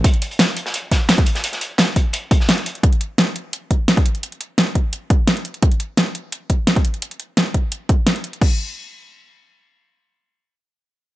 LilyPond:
\new DrumStaff \with { instrumentName = "Drums" } \drummode { \time 4/4 \tempo 4 = 172 <hh bd>16 hh16 hh16 hh16 <hh sn>16 hh16 hh16 sn16 hh8 <hh bd sn>8 <hh sn>16 <hh bd>16 hh16 <hh sn>16 | hh16 <hh sn>16 hh8 <hh sn>8 <hh bd>8 hh8 <hh bd>16 sn16 <hh sn>16 hh16 hh16 hh16 | <hh bd>16 hh16 hh8 <hh sn>8 hh8 hh8 <hh bd>8 <hh sn>16 <hh bd>16 hh16 hh16 | hh16 hh16 hh8 <hh sn>8 <hh bd>8 hh8 <hh bd>8 <hh sn>16 hh16 hh16 hh16 |
<hh bd>16 hh16 hh8 <hh sn>8 hh8 hh8 <hh bd>8 <hh sn>16 <hh bd>16 hh16 hh16 | hh16 hh16 hh8 <hh sn>8 <hh bd>8 hh8 <hh bd>8 <hh sn>16 hh16 hh16 hh16 | <cymc bd>4 r4 r4 r4 | r4 r4 r4 r4 | }